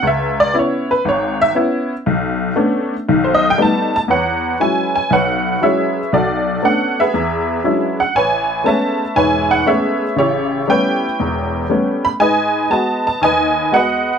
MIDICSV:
0, 0, Header, 1, 2, 480
1, 0, Start_track
1, 0, Tempo, 506757
1, 34, Time_signature, 4, 2, 24, 8
1, 13437, End_track
2, 0, Start_track
2, 0, Title_t, "Honky-tonk piano"
2, 0, Program_c, 0, 3
2, 25, Note_on_c, 0, 37, 62
2, 68, Note_on_c, 0, 76, 74
2, 373, Note_off_c, 0, 76, 0
2, 379, Note_on_c, 0, 74, 87
2, 448, Note_off_c, 0, 37, 0
2, 508, Note_on_c, 0, 59, 50
2, 511, Note_on_c, 0, 61, 48
2, 517, Note_off_c, 0, 74, 0
2, 517, Note_on_c, 0, 64, 60
2, 558, Note_on_c, 0, 73, 74
2, 857, Note_off_c, 0, 59, 0
2, 857, Note_off_c, 0, 73, 0
2, 858, Note_off_c, 0, 61, 0
2, 861, Note_off_c, 0, 64, 0
2, 861, Note_on_c, 0, 71, 79
2, 994, Note_on_c, 0, 32, 73
2, 997, Note_off_c, 0, 71, 0
2, 1029, Note_on_c, 0, 73, 76
2, 1333, Note_off_c, 0, 73, 0
2, 1340, Note_on_c, 0, 76, 101
2, 1412, Note_off_c, 0, 32, 0
2, 1425, Note_off_c, 0, 76, 0
2, 1469, Note_on_c, 0, 59, 58
2, 1474, Note_on_c, 0, 61, 51
2, 1478, Note_on_c, 0, 64, 64
2, 1817, Note_off_c, 0, 59, 0
2, 1819, Note_off_c, 0, 61, 0
2, 1821, Note_off_c, 0, 64, 0
2, 1954, Note_on_c, 0, 35, 67
2, 2371, Note_off_c, 0, 35, 0
2, 2424, Note_on_c, 0, 57, 55
2, 2426, Note_on_c, 0, 59, 52
2, 2430, Note_on_c, 0, 61, 48
2, 2431, Note_on_c, 0, 62, 60
2, 2773, Note_off_c, 0, 57, 0
2, 2775, Note_off_c, 0, 59, 0
2, 2776, Note_off_c, 0, 61, 0
2, 2777, Note_off_c, 0, 62, 0
2, 2920, Note_on_c, 0, 51, 68
2, 2922, Note_on_c, 0, 35, 70
2, 3073, Note_on_c, 0, 72, 70
2, 3169, Note_on_c, 0, 75, 88
2, 3235, Note_off_c, 0, 72, 0
2, 3276, Note_off_c, 0, 75, 0
2, 3318, Note_on_c, 0, 79, 83
2, 3334, Note_off_c, 0, 51, 0
2, 3336, Note_off_c, 0, 35, 0
2, 3389, Note_off_c, 0, 79, 0
2, 3392, Note_on_c, 0, 57, 51
2, 3393, Note_on_c, 0, 55, 55
2, 3396, Note_on_c, 0, 59, 52
2, 3399, Note_on_c, 0, 63, 60
2, 3431, Note_on_c, 0, 81, 81
2, 3737, Note_off_c, 0, 57, 0
2, 3737, Note_off_c, 0, 81, 0
2, 3738, Note_off_c, 0, 55, 0
2, 3740, Note_off_c, 0, 59, 0
2, 3741, Note_off_c, 0, 63, 0
2, 3751, Note_on_c, 0, 81, 88
2, 3798, Note_off_c, 0, 81, 0
2, 3866, Note_on_c, 0, 40, 55
2, 3884, Note_on_c, 0, 71, 50
2, 3890, Note_on_c, 0, 78, 73
2, 3895, Note_on_c, 0, 73, 54
2, 4287, Note_off_c, 0, 40, 0
2, 4328, Note_off_c, 0, 78, 0
2, 4357, Note_on_c, 0, 54, 47
2, 4357, Note_on_c, 0, 56, 41
2, 4361, Note_on_c, 0, 61, 41
2, 4366, Note_on_c, 0, 64, 49
2, 4367, Note_on_c, 0, 80, 74
2, 4679, Note_off_c, 0, 80, 0
2, 4694, Note_on_c, 0, 80, 72
2, 4700, Note_off_c, 0, 56, 0
2, 4701, Note_off_c, 0, 54, 0
2, 4702, Note_off_c, 0, 61, 0
2, 4705, Note_off_c, 0, 64, 0
2, 4800, Note_off_c, 0, 71, 0
2, 4806, Note_off_c, 0, 73, 0
2, 4833, Note_on_c, 0, 35, 60
2, 4841, Note_off_c, 0, 80, 0
2, 4857, Note_on_c, 0, 73, 56
2, 4858, Note_on_c, 0, 78, 77
2, 4859, Note_on_c, 0, 71, 56
2, 5252, Note_off_c, 0, 35, 0
2, 5318, Note_on_c, 0, 54, 49
2, 5329, Note_on_c, 0, 56, 45
2, 5329, Note_on_c, 0, 64, 55
2, 5330, Note_off_c, 0, 73, 0
2, 5330, Note_on_c, 0, 61, 43
2, 5331, Note_on_c, 0, 76, 74
2, 5339, Note_off_c, 0, 78, 0
2, 5341, Note_on_c, 0, 68, 48
2, 5344, Note_on_c, 0, 73, 49
2, 5662, Note_off_c, 0, 54, 0
2, 5667, Note_off_c, 0, 56, 0
2, 5667, Note_off_c, 0, 64, 0
2, 5668, Note_off_c, 0, 61, 0
2, 5769, Note_off_c, 0, 71, 0
2, 5775, Note_off_c, 0, 68, 0
2, 5776, Note_off_c, 0, 73, 0
2, 5801, Note_on_c, 0, 35, 56
2, 5813, Note_on_c, 0, 74, 69
2, 5815, Note_on_c, 0, 66, 50
2, 5816, Note_off_c, 0, 76, 0
2, 5818, Note_on_c, 0, 69, 50
2, 6217, Note_off_c, 0, 35, 0
2, 6275, Note_on_c, 0, 57, 46
2, 6277, Note_on_c, 0, 59, 41
2, 6279, Note_on_c, 0, 61, 41
2, 6284, Note_on_c, 0, 62, 54
2, 6298, Note_off_c, 0, 74, 0
2, 6300, Note_on_c, 0, 78, 74
2, 6621, Note_off_c, 0, 57, 0
2, 6622, Note_off_c, 0, 59, 0
2, 6623, Note_off_c, 0, 61, 0
2, 6625, Note_off_c, 0, 62, 0
2, 6628, Note_off_c, 0, 78, 0
2, 6630, Note_on_c, 0, 76, 79
2, 6636, Note_on_c, 0, 68, 56
2, 6640, Note_on_c, 0, 71, 52
2, 6727, Note_off_c, 0, 66, 0
2, 6729, Note_off_c, 0, 69, 0
2, 6762, Note_on_c, 0, 40, 62
2, 7178, Note_off_c, 0, 40, 0
2, 7237, Note_on_c, 0, 54, 48
2, 7242, Note_on_c, 0, 62, 43
2, 7243, Note_on_c, 0, 56, 41
2, 7243, Note_on_c, 0, 61, 43
2, 7246, Note_on_c, 0, 64, 57
2, 7541, Note_off_c, 0, 76, 0
2, 7544, Note_off_c, 0, 68, 0
2, 7546, Note_off_c, 0, 71, 0
2, 7578, Note_on_c, 0, 78, 72
2, 7583, Note_off_c, 0, 54, 0
2, 7585, Note_off_c, 0, 56, 0
2, 7585, Note_off_c, 0, 61, 0
2, 7585, Note_off_c, 0, 62, 0
2, 7587, Note_off_c, 0, 64, 0
2, 7711, Note_off_c, 0, 78, 0
2, 7722, Note_on_c, 0, 33, 58
2, 7728, Note_on_c, 0, 80, 84
2, 7736, Note_on_c, 0, 73, 60
2, 7743, Note_on_c, 0, 71, 57
2, 8138, Note_off_c, 0, 33, 0
2, 8185, Note_on_c, 0, 56, 49
2, 8185, Note_on_c, 0, 57, 43
2, 8193, Note_on_c, 0, 59, 43
2, 8198, Note_on_c, 0, 61, 53
2, 8200, Note_off_c, 0, 73, 0
2, 8204, Note_on_c, 0, 81, 78
2, 8214, Note_on_c, 0, 73, 55
2, 8217, Note_off_c, 0, 80, 0
2, 8217, Note_on_c, 0, 76, 55
2, 8537, Note_off_c, 0, 56, 0
2, 8537, Note_off_c, 0, 57, 0
2, 8541, Note_off_c, 0, 59, 0
2, 8544, Note_off_c, 0, 61, 0
2, 8647, Note_off_c, 0, 81, 0
2, 8653, Note_off_c, 0, 71, 0
2, 8674, Note_off_c, 0, 73, 0
2, 8674, Note_on_c, 0, 44, 61
2, 8676, Note_on_c, 0, 28, 61
2, 8678, Note_on_c, 0, 80, 87
2, 8687, Note_on_c, 0, 71, 61
2, 8689, Note_on_c, 0, 73, 60
2, 9008, Note_on_c, 0, 78, 81
2, 9019, Note_off_c, 0, 80, 0
2, 9094, Note_off_c, 0, 44, 0
2, 9096, Note_off_c, 0, 28, 0
2, 9130, Note_off_c, 0, 76, 0
2, 9152, Note_on_c, 0, 56, 47
2, 9152, Note_on_c, 0, 57, 47
2, 9154, Note_on_c, 0, 61, 56
2, 9158, Note_on_c, 0, 59, 44
2, 9161, Note_off_c, 0, 78, 0
2, 9162, Note_on_c, 0, 76, 77
2, 9165, Note_off_c, 0, 73, 0
2, 9171, Note_on_c, 0, 68, 55
2, 9180, Note_on_c, 0, 73, 57
2, 9501, Note_off_c, 0, 56, 0
2, 9501, Note_off_c, 0, 57, 0
2, 9502, Note_off_c, 0, 61, 0
2, 9504, Note_off_c, 0, 59, 0
2, 9605, Note_off_c, 0, 71, 0
2, 9607, Note_off_c, 0, 76, 0
2, 9611, Note_off_c, 0, 68, 0
2, 9616, Note_off_c, 0, 73, 0
2, 9624, Note_on_c, 0, 49, 57
2, 9627, Note_on_c, 0, 33, 54
2, 9647, Note_on_c, 0, 73, 79
2, 9654, Note_on_c, 0, 67, 58
2, 9658, Note_on_c, 0, 64, 56
2, 10050, Note_off_c, 0, 49, 0
2, 10051, Note_off_c, 0, 33, 0
2, 10113, Note_on_c, 0, 57, 40
2, 10115, Note_on_c, 0, 55, 46
2, 10119, Note_on_c, 0, 59, 44
2, 10121, Note_on_c, 0, 61, 50
2, 10132, Note_off_c, 0, 73, 0
2, 10134, Note_on_c, 0, 79, 81
2, 10146, Note_on_c, 0, 73, 60
2, 10149, Note_on_c, 0, 71, 56
2, 10462, Note_off_c, 0, 57, 0
2, 10463, Note_off_c, 0, 55, 0
2, 10465, Note_off_c, 0, 59, 0
2, 10466, Note_off_c, 0, 61, 0
2, 10569, Note_off_c, 0, 67, 0
2, 10571, Note_off_c, 0, 64, 0
2, 10605, Note_on_c, 0, 40, 56
2, 10608, Note_on_c, 0, 28, 59
2, 11021, Note_off_c, 0, 40, 0
2, 11022, Note_off_c, 0, 28, 0
2, 11078, Note_on_c, 0, 55, 44
2, 11079, Note_on_c, 0, 57, 45
2, 11084, Note_on_c, 0, 61, 51
2, 11090, Note_on_c, 0, 59, 43
2, 11386, Note_off_c, 0, 73, 0
2, 11388, Note_off_c, 0, 71, 0
2, 11410, Note_on_c, 0, 83, 87
2, 11424, Note_off_c, 0, 55, 0
2, 11425, Note_off_c, 0, 57, 0
2, 11427, Note_off_c, 0, 61, 0
2, 11430, Note_off_c, 0, 59, 0
2, 11456, Note_off_c, 0, 79, 0
2, 11458, Note_off_c, 0, 83, 0
2, 11553, Note_on_c, 0, 56, 55
2, 11555, Note_on_c, 0, 44, 55
2, 11556, Note_on_c, 0, 80, 81
2, 11569, Note_on_c, 0, 75, 62
2, 11578, Note_on_c, 0, 71, 59
2, 11975, Note_off_c, 0, 44, 0
2, 11975, Note_off_c, 0, 56, 0
2, 12032, Note_on_c, 0, 56, 49
2, 12033, Note_on_c, 0, 59, 42
2, 12037, Note_on_c, 0, 81, 78
2, 12046, Note_on_c, 0, 66, 54
2, 12052, Note_off_c, 0, 80, 0
2, 12365, Note_off_c, 0, 81, 0
2, 12379, Note_on_c, 0, 81, 79
2, 12382, Note_off_c, 0, 56, 0
2, 12382, Note_off_c, 0, 59, 0
2, 12388, Note_off_c, 0, 66, 0
2, 12486, Note_off_c, 0, 75, 0
2, 12491, Note_off_c, 0, 71, 0
2, 12513, Note_off_c, 0, 81, 0
2, 12517, Note_on_c, 0, 39, 59
2, 12529, Note_on_c, 0, 80, 88
2, 12543, Note_on_c, 0, 75, 63
2, 12546, Note_on_c, 0, 71, 62
2, 12936, Note_off_c, 0, 39, 0
2, 12992, Note_on_c, 0, 56, 48
2, 12999, Note_on_c, 0, 59, 43
2, 12999, Note_on_c, 0, 66, 53
2, 13012, Note_on_c, 0, 78, 76
2, 13016, Note_off_c, 0, 75, 0
2, 13017, Note_off_c, 0, 71, 0
2, 13018, Note_off_c, 0, 80, 0
2, 13031, Note_on_c, 0, 71, 56
2, 13031, Note_on_c, 0, 75, 55
2, 13341, Note_off_c, 0, 56, 0
2, 13344, Note_off_c, 0, 59, 0
2, 13345, Note_off_c, 0, 66, 0
2, 13437, Note_off_c, 0, 71, 0
2, 13437, Note_off_c, 0, 75, 0
2, 13437, Note_off_c, 0, 78, 0
2, 13437, End_track
0, 0, End_of_file